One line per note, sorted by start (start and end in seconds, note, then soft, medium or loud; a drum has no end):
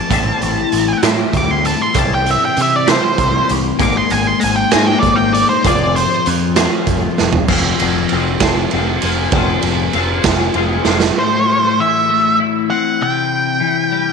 0.00 0.10 F3 medium
0.00 0.10 C4 medium
0.00 0.12 C5 medium
0.00 1.00 A5 medium
0.10 0.30 A1 medium
0.10 1.01 A2 medium
0.10 1.05 E3 medium
0.10 1.04 G3 medium
0.10 1.04 C4 loud
0.10 1.03 E4 medium
0.10 1.02 C5 loud
0.10 kick loud
0.10 closed hi-hat medium
0.42 0.62 A1 medium
0.42 closed hi-hat medium
0.72 0.92 A1 medium
0.72 closed hi-hat medium
1.03 1.23 A2 medium
1.03 1.93 A2 medium
1.03 1.93 E3 medium
1.03 1.95 G3 medium
1.03 1.96 C4 medium
1.03 1.94 E4 medium
1.03 1.97 C5 medium
1.03 snare loud
1.03 closed hi-hat medium
1.33 1.73 D2 medium
1.33 1.51 D6 medium
1.33 kick medium
1.33 closed hi-hat medium
1.51 1.66 C6 medium
1.65 1.81 A5 medium
1.65 closed hi-hat medium
1.81 1.99 C6 loud
1.94 2.34 C2 medium
1.94 2.85 C3 medium
1.94 2.86 E3 medium
1.94 2.87 G3 medium
1.94 2.87 C4 loud
1.94 2.86 E4 loud
1.94 2.86 C5 medium
1.94 kick loud
1.94 closed hi-hat medium
1.99 2.13 A5 loud
2.15 2.31 G5 medium
2.26 closed hi-hat medium
2.31 2.44 E5 medium
2.45 2.59 G5 medium
2.57 2.97 C3 medium
2.57 closed hi-hat medium
2.62 2.75 E5 medium
2.76 2.90 D5 medium
2.86 3.79 C3 medium
2.86 3.78 E3 medium
2.86 3.79 G3 medium
2.86 3.80 C4 medium
2.86 3.78 E4 medium
2.86 3.82 C5 medium
2.86 3.49 C5 medium
2.86 snare loud
2.86 closed hi-hat medium
3.18 3.39 C2 medium
3.18 kick medium
3.18 closed hi-hat medium
3.49 3.70 C2 medium
3.49 closed hi-hat medium
3.79 4.00 G#1 loud
3.79 4.76 G#3 loud
3.79 4.71 A#3 loud
3.79 4.71 D#4 loud
3.79 4.73 G#4 medium
3.79 4.72 C5 loud
3.79 3.97 D6 loud
3.79 kick loud
3.79 closed hi-hat medium
3.97 4.12 C6 medium
4.10 4.31 G#1 medium
4.10 4.26 G#5 medium
4.10 closed hi-hat medium
4.27 4.42 C6 medium
4.40 4.63 G#1 medium
4.40 4.56 G#5 medium
4.40 closed hi-hat medium
4.56 4.71 G5 medium
4.71 4.94 G#2 medium
4.71 5.64 A#3 medium
4.71 5.64 D#4 medium
4.71 5.66 G#4 medium
4.71 5.67 C5 medium
4.71 4.87 G#5 medium
4.71 snare loud
4.71 closed hi-hat medium
4.76 5.64 G#3 medium
4.87 5.03 G5 medium
5.00 5.42 G#1 medium
5.00 5.17 D5 medium
5.00 kick medium
5.00 closed hi-hat medium
5.16 5.32 G5 loud
5.34 5.49 D5 loud
5.34 closed hi-hat medium
5.49 5.67 C5 medium
5.64 6.04 F1 loud
5.64 6.55 F3 loud
5.64 6.55 C4 loud
5.64 6.56 F4 loud
5.64 6.56 G#4 loud
5.64 6.55 C5 loud
5.64 5.96 D5 loud
5.64 kick loud
5.64 closed hi-hat medium
5.96 6.26 C5 loud
5.96 closed hi-hat medium
6.26 6.66 F2 medium
6.26 closed hi-hat medium
6.56 7.47 F3 medium
6.56 7.48 C4 medium
6.56 7.48 F4 medium
6.56 7.47 G#4 medium
6.56 7.47 C5 medium
6.56 snare loud
6.56 closed hi-hat loud
6.87 7.07 F1 medium
6.87 kick medium
6.87 closed hi-hat medium
7.18 7.39 F1 medium
7.18 snare medium
7.33 floor tom medium
7.48 7.73 F1 loud
7.48 9.33 F3 medium
7.48 8.11 C4 loud
7.48 7.82 F4 loud
7.48 7.81 G#4 loud
7.48 7.78 C5 loud
7.48 kick loud
7.48 crash loud
7.79 8.05 F1 medium
7.79 8.13 F4 medium
7.79 8.15 G#4 medium
7.79 8.14 C5 medium
7.79 ride medium
8.09 8.35 F1 medium
8.09 8.73 C4 medium
8.09 ride medium
8.13 8.44 F4 medium
8.13 8.43 G#4 medium
8.13 8.42 C5 medium
8.40 8.65 F1 medium
8.40 8.75 G#4 medium
8.40 8.76 C5 medium
8.40 kick medium
8.40 snare loud
8.40 ride loud
8.45 8.74 F4 medium
8.71 8.97 F1 medium
8.71 9.35 C4 medium
8.71 9.06 F4 medium
8.71 ride medium
8.76 9.04 G#4 medium
8.76 9.03 C5 medium
9.02 9.27 F1 medium
9.02 9.35 G#4 medium
9.02 9.36 C5 medium
9.02 ride medium
9.07 9.34 F4 medium
9.32 9.56 F1 loud
9.32 9.95 F3 medium
9.32 9.92 C4 loud
9.32 9.67 F4 loud
9.32 kick loud
9.32 ride medium
9.36 9.66 G#4 loud
9.36 9.64 C5 loud
9.62 9.87 F1 loud
9.62 9.95 C5 medium
9.62 ride medium
9.67 9.94 F4 medium
9.67 9.95 G#4 medium
9.93 10.18 F1 medium
9.93 10.54 C4 medium
9.93 10.28 F4 medium
9.93 10.27 G#4 medium
9.93 10.25 C5 medium
9.93 ride medium
10.24 10.48 F1 loud
10.24 10.57 C5 medium
10.24 kick medium
10.24 snare loud
10.24 ride loud
10.28 10.55 F4 medium
10.28 10.56 G#4 medium
10.54 10.79 F1 medium
10.54 11.15 C4 medium
10.54 10.87 F4 medium
10.54 10.86 G#4 medium
10.54 ride medium
10.58 10.83 C5 medium
10.85 11.09 F1 medium
10.85 11.16 F4 medium
10.85 11.15 G#4 medium
10.85 11.14 C5 medium
10.85 snare medium
11.00 snare medium
11.17 12.70 A2 medium
11.17 11.81 C5 medium
11.79 13.60 E3 medium
11.79 12.36 E5 loud
12.09 13.00 A3 medium
12.40 14.13 E4 medium
12.70 13.01 C4 medium
12.70 13.01 F#5 loud
13.01 14.13 C3 medium
13.01 14.13 G5 loud
13.60 14.13 E3 medium
13.92 14.13 G3 medium